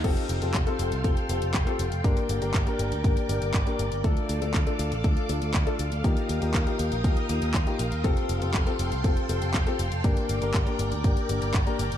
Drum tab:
CC |x---------------|----------------|----------------|----------------|
HH |xxxxxxxxxxxxxxxx|xxxxxxxxxxxxxxxx|xxxxxxxxxxxxxxxx|xxxxxxxxxxxxxxxx|
CP |----x-------x---|----x-------x---|----x-------x---|----x-------x---|
BD |o---o---o---o---|o---o---o---o---|o---o---o---o---|o---o---o---o---|

CC |----------------|----------------|
HH |xxxxxxxxxxxxxxxx|xxxxxxxxxxxxxxxx|
CP |----x-------x---|----x-------x---|
BD |o---o---o---o---|o---o---o---o---|